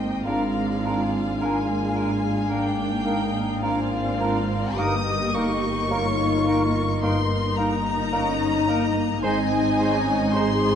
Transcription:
0.00 0.22 G#1 soft
0.00 0.22 G#2 soft
0.00 0.31 D#3 soft
0.00 2.22 G#3 soft
0.00 0.26 A#3 soft
0.00 1.38 C4 soft
0.00 0.22 D#4 soft
0.00 0.26 D#4 soft
0.00 3.77 G#4 soft
0.00 0.26 C5 soft
0.00 0.31 C5 soft
0.00 0.24 D#5 soft
0.00 0.31 D#5 soft
0.00 0.23 G5 medium
0.00 0.27 G5 soft
0.25 4.74 G#1 soft
0.25 2.50 G#2 soft
0.25 4.74 G#2 soft
0.25 1.40 G#3 soft
0.25 0.42 A#3 soft
0.25 4.62 D4 soft
0.25 0.43 D4 soft
0.25 2.47 F4 soft
0.25 0.42 A#4 soft
0.25 0.84 A#4 soft
0.25 1.42 D5 soft
0.25 1.39 F5 medium
0.25 1.42 F5 soft
0.66 2.87 A#3 soft
0.85 1.02 A#3 soft
0.85 1.01 D4 soft
0.85 3.63 G#4 soft
0.85 1.01 A#4 soft
1.40 2.48 G#3 soft
1.40 4.62 A#3 soft
1.40 1.59 A#3 soft
1.40 1.58 D4 soft
1.40 1.57 A#4 soft
1.40 3.59 F5 soft
1.40 2.50 G#5 medium
1.40 2.24 G#5 soft
1.78 4.01 D5 soft
1.95 2.12 A#3 soft
1.95 2.12 D4 soft
1.95 2.11 A#4 soft
2.50 4.83 G#2 soft
2.50 2.66 A#3 soft
2.50 3.63 A#3 soft
2.50 3.07 D4 soft
2.50 2.68 D4 soft
2.50 2.66 A#4 soft
2.50 3.63 G5 medium
2.50 3.64 G5 soft
2.88 5.15 A#3 soft
3.06 3.22 A#3 soft
3.06 3.23 D4 soft
3.06 3.63 D#4 soft
3.06 3.22 A#4 soft
3.25 4.38 A#4 soft
3.62 3.79 A#3 soft
3.62 4.78 C4 soft
3.62 4.83 D4 soft
3.62 3.81 D4 soft
3.62 4.78 F4 soft
3.62 4.20 G#4 soft
3.62 3.78 A#4 soft
3.62 4.76 D5 soft
3.62 4.75 F5 medium
3.62 4.79 F5 soft
4.02 4.83 D5 soft
4.20 4.36 A#3 soft
4.20 4.38 D4 soft
4.20 4.76 A#4 soft
4.20 4.37 A#4 soft
4.40 5.53 A#4 soft
4.77 9.20 G1 soft
4.77 9.20 G2 soft
4.77 7.00 G2 soft
4.77 4.94 A#3 soft
4.77 5.90 A#3 soft
4.77 9.20 A#3 soft
4.77 9.20 D#4 soft
4.77 4.95 D#4 soft
4.77 5.89 G4 soft
4.77 5.89 A#4 soft
4.77 4.94 A#4 medium
4.77 5.91 D#5 soft
4.77 5.35 D#6 medium
4.77 5.36 D#6 medium
5.16 7.38 A#3 soft
5.33 5.51 A#3 soft
5.33 5.53 D#4 soft
5.33 5.52 A#4 soft
5.33 7.01 C#6 medium
5.54 6.64 A#4 soft
5.90 6.07 A#3 soft
5.90 7.00 A#3 soft
5.90 8.12 D#4 soft
5.90 6.09 D#4 soft
5.90 7.02 F4 soft
5.90 6.46 A#4 soft
5.90 6.07 A#4 soft
5.90 6.47 C#5 soft
6.28 8.48 D#5 soft
6.47 6.63 A#3 soft
6.47 6.65 D#4 soft
6.47 6.63 A#4 soft
6.47 7.00 A#4 soft
6.65 7.75 A#4 soft
7.01 9.28 G2 soft
7.01 7.19 A#3 soft
7.01 9.23 D#4 medium
7.01 7.21 D#4 soft
7.01 8.10 A#4 soft
7.01 7.19 A#4 soft
7.01 7.56 C6 medium
7.39 9.28 A#3 soft
7.57 7.74 A#3 soft
7.57 7.75 D#4 soft
7.57 7.74 A#4 soft
7.57 8.94 A#5 medium
7.57 9.24 A#5 medium
7.76 8.85 A#4 soft
8.12 8.29 A#3 soft
8.12 8.67 C#4 medium
8.12 10.75 D#4 soft
8.12 8.30 D#4 soft
8.12 8.28 A#4 soft
8.12 9.23 D#5 soft
8.50 10.69 D#5 soft
8.68 8.84 A#3 soft
8.68 9.24 A#3 medium
8.68 8.86 D#4 soft
8.68 8.84 A#4 soft
8.86 9.28 A#4 soft
9.22 10.75 G#1 medium
9.22 10.75 G#2 medium
9.22 10.75 G#2 soft
9.22 9.40 G#3 medium
9.22 10.75 C4 medium
9.22 9.80 C4 medium
9.22 10.75 D#4 medium
9.22 10.33 D#4 medium
9.22 9.41 D#4 medium
9.22 10.32 G#4 medium
9.22 9.39 C5 medium
9.22 10.33 D#5 medium
9.22 10.32 G#5 medium
9.22 10.36 G#5 medium
9.60 10.75 C4 soft
9.79 9.96 G#3 soft
9.79 10.35 C#4 soft
9.79 9.97 D#4 soft
9.79 9.95 C5 soft
9.97 10.75 G#4 soft
10.33 10.51 G#3 medium
10.33 10.51 D#4 soft
10.33 10.75 D#4 medium
10.33 10.75 G#4 medium
10.33 10.75 C5 medium
10.33 10.75 C5 soft
10.33 10.50 C5 soft
10.33 10.75 C6 medium
10.70 10.75 D#5 soft

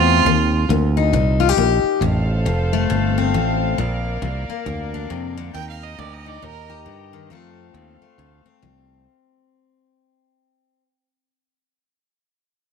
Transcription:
0.00 0.24 E2 loud
0.00 0.24 A3 medium
0.00 0.26 C4 medium
0.00 0.67 F4 loud
0.25 0.68 D#2 medium
0.25 0.67 D#3 medium
0.69 1.12 D2 loud
0.69 1.11 A#3 medium
0.97 2.00 D#4 medium
1.13 1.56 C2 loud
1.13 1.54 A#2 medium
1.40 1.49 F4 medium
1.49 2.02 G4 medium
1.57 1.82 A#1 medium
1.57 1.99 A#3 medium
1.84 muted fingered electric bass stroke soft
2.01 2.44 A1 medium
2.01 2.43 F2 medium
2.01 3.77 A4 medium
2.01 3.76 C5 medium
2.01 5.51 F5 medium
2.46 2.89 F1 loud
2.46 2.87 F3 medium
2.73 3.76 A3 medium
2.90 3.33 G1 loud
2.90 3.31 C3 medium
3.18 3.79 C4 medium
3.34 3.77 A1 loud
3.34 3.75 F3 medium
3.77 4.21 A#1 medium
3.77 4.19 A#2 medium
3.77 5.52 A#3 medium
3.77 5.52 A#4 medium
3.77 5.52 D5 medium
4.22 4.47 C2 loud
4.22 4.63 F3 medium
4.49 5.53 A#3 medium
4.49 muted fingered electric bass stroke soft
4.66 5.09 D2 loud
4.66 5.07 F2 medium
4.94 5.53 D4 medium
5.10 5.53 F2 loud
5.10 5.37 C3 medium
5.37 5.55 D3 medium
5.54 5.97 D#2 medium
5.54 5.95 D#3 medium
5.54 7.28 D#4 medium
5.54 7.28 D#5 medium
5.54 7.29 G5 medium
5.54 5.68 G5 loud
5.54 7.29 A#5 medium
5.70 5.85 F5 medium
5.84 6.00 D#5 medium
5.99 6.41 D2 loud
5.99 6.39 A#3 medium
5.99 6.15 D5 medium
6.14 6.30 D#5 loud
6.26 7.29 D#4 medium
6.26 6.45 D5 loud
6.42 6.85 D#2 loud
6.42 6.83 A#2 medium
6.42 6.69 A#4 loud
6.70 7.29 G4 medium
6.86 7.29 G2 medium
6.86 7.13 D3 medium
7.13 7.30 D#3 medium
7.29 7.71 F2 medium
7.29 7.73 F2 medium
7.29 7.73 F3 medium
7.29 8.01 A3 medium
7.29 8.44 C4 medium
7.29 9.04 A4 medium
7.29 9.06 A4 medium
7.29 9.04 C5 medium
7.29 9.04 F5 medium
7.74 7.99 D#2 loud
7.74 8.15 F3 medium
8.02 9.05 A3 medium
8.18 8.43 D2 loud
8.18 8.59 C3 medium
8.46 10.83 C4 medium
8.62 9.06 C2 loud
8.62 9.03 F3 medium

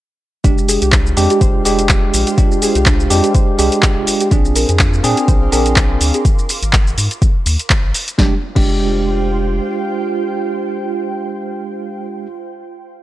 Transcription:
0.44 0.78 F1 loud
0.44 1.14 G#3 medium
0.44 0.47 D4 loud
0.44 1.14 D4 medium
0.44 4.96 F4 medium
0.44 1.14 G4 medium
0.44 kick loud
0.44 closed hi-hat medium
0.44 shaker soft
0.58 shaker soft
0.64 5.09 C5 medium
0.68 0.76 G#4 loud
0.68 open hi-hat loud
0.68 shaker medium
0.82 1.13 C2 loud
0.82 0.88 G4 medium
0.82 closed hi-hat medium
0.82 shaker soft
0.92 1.01 D4 medium
0.92 kick loud
0.92 clap loud
0.92 closed hi-hat medium
0.92 shaker soft
1.06 shaker soft
1.17 1.28 F2 medium
1.17 1.63 G#3 loud
1.17 1.63 D4 medium
1.17 1.63 G4 loud
1.17 open hi-hat loud
1.17 shaker medium
1.30 1.34 G4 medium
1.30 closed hi-hat medium
1.30 shaker soft
1.41 1.61 F1 medium
1.41 1.44 C5 loud
1.41 kick loud
1.41 closed hi-hat medium
1.41 shaker soft
1.65 2.10 F1 loud
1.65 2.35 G#3 medium
1.65 2.35 D4 medium
1.65 2.35 G4 loud
1.65 1.73 G#4 loud
1.65 open hi-hat loud
1.65 shaker medium
1.79 closed hi-hat medium
1.79 shaker soft
1.89 kick loud
1.89 clap loud
1.89 closed hi-hat medium
1.89 shaker soft
2.14 2.24 A#1 loud
2.14 open hi-hat loud
2.14 shaker medium
2.27 2.31 G4 medium
2.27 closed hi-hat medium
2.27 shaker soft
2.37 3.08 G#3 medium
2.37 3.08 D4 medium
2.37 2.41 D4 loud
2.37 3.08 G4 medium
2.37 kick loud
2.37 closed hi-hat medium
2.37 shaker soft
2.52 shaker soft
2.62 2.70 G#4 loud
2.62 open hi-hat loud
2.62 shaker medium
2.75 3.07 C2 loud
2.75 2.82 G4 medium
2.75 closed hi-hat medium
2.75 shaker soft
2.86 2.94 D4 medium
2.86 kick loud
2.86 clap loud
2.86 closed hi-hat medium
2.86 shaker soft
3.00 shaker soft
3.10 3.21 F2 medium
3.10 3.56 G#3 loud
3.10 3.56 D4 loud
3.10 3.56 G4 loud
3.10 open hi-hat loud
3.10 shaker medium
3.24 3.28 G4 medium
3.24 closed hi-hat medium
3.24 shaker soft
3.35 3.38 C5 loud
3.35 kick loud
3.35 closed hi-hat medium
3.35 shaker soft
3.58 3.69 C2 medium
3.58 4.29 G#3 medium
3.58 4.29 D4 medium
3.58 4.29 G4 loud
3.58 3.67 G#4 loud
3.58 open hi-hat loud
3.58 shaker medium
3.72 closed hi-hat medium
3.72 shaker soft
3.83 kick loud
3.83 clap loud
3.83 closed hi-hat medium
3.83 shaker soft
3.96 4.05 F1 medium
4.07 open hi-hat loud
4.07 shaker medium
4.21 4.25 G4 medium
4.21 closed hi-hat medium
4.21 shaker soft
4.31 4.65 A#1 loud
4.31 5.01 C4 medium
4.31 4.35 D4 loud
4.31 5.01 D4 medium
4.31 5.02 G#4 medium
4.31 6.25 A#4 medium
4.31 kick loud
4.31 closed hi-hat medium
4.31 shaker soft
4.45 shaker soft
4.50 6.25 F5 medium
4.56 4.63 A#4 loud
4.56 open hi-hat loud
4.56 shaker medium
4.69 5.01 F2 loud
4.69 4.75 G#4 medium
4.69 6.25 C6 medium
4.69 closed hi-hat medium
4.69 shaker soft
4.79 4.88 D4 medium
4.79 kick loud
4.79 clap loud
4.79 closed hi-hat medium
4.79 shaker soft
4.92 6.25 D6 medium
4.92 shaker soft
5.04 5.15 A#2 medium
5.04 5.50 C4 loud
5.04 5.50 D4 loud
5.04 5.50 G#4 loud
5.04 open hi-hat loud
5.04 shaker medium
5.17 5.22 G#4 medium
5.17 closed hi-hat medium
5.17 shaker soft
5.28 5.48 A#1 medium
5.28 5.31 C5 loud
5.28 kick loud
5.28 closed hi-hat medium
5.28 shaker soft
5.52 5.97 A#1 medium
5.52 6.22 C4 medium
5.52 6.22 D4 medium
5.52 6.23 G#4 loud
5.52 5.60 A#4 loud
5.52 open hi-hat loud
5.52 shaker medium
5.66 closed hi-hat medium
5.66 shaker soft
5.76 kick loud
5.76 clap loud
5.76 closed hi-hat medium
5.76 shaker soft
6.01 6.11 D2 loud
6.01 open hi-hat loud
6.01 shaker medium
6.14 6.18 G#4 medium
6.14 closed hi-hat medium
6.14 shaker soft
6.25 kick loud
6.25 closed hi-hat medium
6.25 shaker soft
6.39 shaker soft
6.49 open hi-hat loud
6.49 shaker medium
6.62 6.94 G#1 loud
6.62 closed hi-hat medium
6.62 shaker soft
6.73 kick loud
6.73 clap loud
6.73 closed hi-hat medium
6.73 shaker soft
6.87 shaker soft
6.98 7.08 G#2 medium
6.98 open hi-hat loud
6.98 shaker medium
7.11 closed hi-hat medium
7.11 shaker soft
7.22 kick loud
7.22 closed hi-hat medium
7.22 shaker soft
7.46 7.57 D#2 medium
7.46 open hi-hat loud
7.46 shaker medium
7.59 closed hi-hat medium
7.59 shaker soft
7.70 kick loud
7.70 clap loud
7.70 closed hi-hat medium
7.70 shaker soft
7.84 7.92 G#1 medium
7.94 open hi-hat loud
7.94 shaker medium
8.08 closed hi-hat medium
8.08 shaker soft
8.18 8.33 F1 loud
8.18 8.33 G#3 medium
8.18 8.33 D4 medium
8.18 11.88 F4 medium
8.18 8.33 G4 medium
8.18 kick loud
8.18 snare medium
8.26 11.96 C5 medium
8.34 12.04 G5 medium
8.56 9.60 F1 loud
8.56 12.25 G#3 medium
8.56 12.26 D4 medium
8.56 8.69 D4 medium
8.56 12.26 G4 loud
8.56 kick loud
8.56 crash medium

